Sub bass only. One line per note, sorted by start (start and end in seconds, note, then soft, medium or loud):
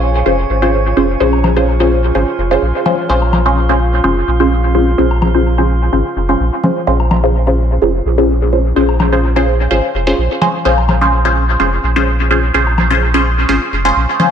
0.00 0.23 A#1 loud
0.26 0.45 F1 loud
0.50 0.93 G#1 medium
0.97 1.16 F1 medium
1.21 2.12 A#1 loud
2.15 2.25 G#1 loud
2.38 2.58 F1 loud
2.62 2.72 A#1 medium
3.09 4.00 A#1 loud
4.04 4.23 F1 loud
4.28 4.95 A#1 medium
4.98 5.89 A#1 loud
5.93 6.03 G#1 loud
6.16 6.36 F1 loud
6.40 6.50 A#1 medium
6.87 7.78 A#1 loud
7.82 8.01 F1 loud
8.05 8.73 A#1 medium
8.76 9.67 A#1 loud
9.71 9.81 G#1 loud
9.94 10.14 F1 loud
10.18 10.28 A#1 medium
10.65 11.56 A#1 loud
11.60 11.79 F1 loud
11.83 12.51 A#1 medium
12.54 13.45 A#1 loud
13.49 13.59 G#1 loud
13.73 13.92 F1 loud
13.96 14.06 A#1 medium